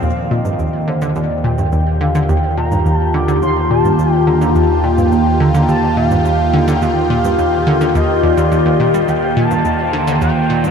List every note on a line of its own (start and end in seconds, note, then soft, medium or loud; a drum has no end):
0.00 0.10 D#2 loud
0.00 9.05 D#2 medium
0.00 1.74 D3 medium
0.00 10.71 D#3 medium
0.00 1.42 C4 medium
0.00 10.71 G4 medium
0.00 0.33 F5 loud
0.00 9.11 G5 medium
0.00 shaker medium
0.17 high tom medium
0.26 10.71 F4 medium
0.31 0.41 A#2 loud
0.31 0.89 D#5 loud
0.45 0.49 G2 medium
0.45 high tom soft
0.45 shaker medium
0.55 10.71 A#3 medium
0.59 0.66 D#2 medium
0.59 shaker soft
0.65 9.74 G4 medium
0.73 high tom medium
0.88 0.98 D3 loud
0.88 1.16 C5 medium
1.02 1.09 D3 medium
1.02 high tom medium
1.02 shaker medium
1.16 1.23 D#2 loud
1.16 1.42 D5 loud
1.16 shaker medium
1.30 high tom soft
1.44 1.54 A#2 loud
1.44 2.02 G5 loud
1.58 1.62 G2 medium
1.58 high tom medium
1.58 shaker medium
1.72 1.79 D#2 medium
1.72 shaker medium
1.86 high tom medium
2.01 2.11 D3 loud
2.01 2.31 F5 medium
2.15 2.22 D3 loud
2.15 high tom soft
2.15 shaker medium
2.29 2.36 D#2 loud
2.29 2.57 G5 loud
2.29 shaker medium
2.43 high tom medium
2.57 2.68 A#2 loud
2.57 2.96 A#5 loud
2.72 2.76 G2 medium
2.72 high tom medium
2.72 shaker medium
2.86 2.93 D#2 medium
2.86 shaker medium
2.96 3.16 A5 loud
3.00 high tom soft
3.14 3.24 D3 loud
3.14 3.42 D6 loud
3.28 3.35 D3 loud
3.28 high tom medium
3.28 shaker medium
3.42 3.49 D#2 loud
3.42 3.69 C6 loud
3.42 shaker medium
3.56 high tom medium
3.71 3.81 A#2 loud
3.71 4.12 A5 loud
3.85 3.89 G2 medium
3.85 high tom soft
3.85 shaker medium
3.99 4.06 D#2 medium
3.99 shaker medium
4.12 4.29 G5 loud
4.12 high tom medium
4.27 4.38 D3 loud
4.27 4.57 A#5 loud
4.41 4.48 D3 loud
4.41 high tom medium
4.41 shaker medium
4.55 4.62 D#2 loud
4.55 4.86 A5 loud
4.55 shaker medium
4.70 high tom soft
4.84 4.94 A#2 loud
4.84 5.42 G5 loud
4.98 5.02 G2 medium
4.98 high tom medium
4.98 shaker medium
5.12 5.19 D#2 medium
5.12 shaker medium
5.26 high tom medium
5.40 5.51 D3 loud
5.40 5.69 A#5 loud
5.54 5.61 D3 loud
5.54 high tom soft
5.54 shaker medium
5.69 5.76 D#2 loud
5.69 5.95 A5 loud
5.69 shaker medium
5.83 high tom medium
5.97 6.07 A#2 loud
5.97 6.56 F5 loud
6.11 6.15 G2 medium
6.11 high tom medium
6.11 shaker medium
6.25 6.32 D#2 medium
6.25 shaker medium
6.40 high tom soft
6.53 6.64 D3 loud
6.53 6.84 G5 medium
6.68 6.75 D3 loud
6.68 high tom medium
6.68 shaker medium
6.82 6.89 D#2 loud
6.82 7.95 F5 loud
6.82 shaker medium
6.96 high tom medium
7.10 7.21 A#2 loud
7.24 7.29 G2 medium
7.24 high tom soft
7.24 shaker medium
7.38 7.45 D#2 medium
7.38 shaker medium
7.53 high tom medium
7.67 7.77 D3 loud
7.81 7.88 D3 medium
7.81 high tom medium
7.81 shaker medium
7.95 8.02 D#2 loud
7.95 8.25 D#5 loud
7.95 shaker medium
8.09 high tom soft
8.23 8.30 D#2 loud
8.23 8.82 D5 loud
8.37 8.48 D#2 loud
8.37 high tom medium
8.37 shaker medium
8.52 8.59 D#2 loud
8.52 shaker medium
8.66 8.70 D#2 loud
8.66 high tom medium
8.80 8.87 A#2 loud
8.80 9.10 D#5 medium
8.94 9.01 G3 medium
8.94 high tom soft
8.94 shaker medium
9.08 9.15 D#2 loud
9.08 10.71 D#2 medium
9.08 10.71 F5 medium
9.08 9.36 G5 loud
9.08 shaker medium
9.23 high tom medium
9.37 9.47 A#2 loud
9.37 10.18 A5 loud
9.51 9.55 G2 medium
9.51 high tom soft
9.51 shaker medium
9.65 9.72 D#2 medium
9.65 shaker medium
9.71 10.71 C5 medium
9.79 high tom medium
9.93 10.04 D3 loud
10.07 10.14 D3 loud
10.07 high tom medium
10.07 shaker medium
10.21 10.28 D#2 loud
10.21 10.71 G5 loud
10.21 shaker soft
10.36 high tom soft
10.50 10.60 A#2 loud
10.64 10.68 G2 medium
10.64 high tom medium
10.64 shaker medium